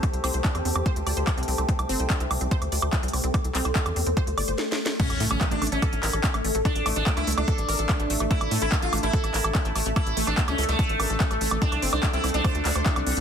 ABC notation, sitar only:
X:1
M:4/4
L:1/16
Q:1/4=145
K:none
V:1 name="Sitar"
z16 | z16 | z16 | ^C2 z C z D z C8 z |
D2 z D z E z D8 z | E2 z E z F z E8 z | E2 z D z ^C z A,8 z | D2 z D z E z D8 z |]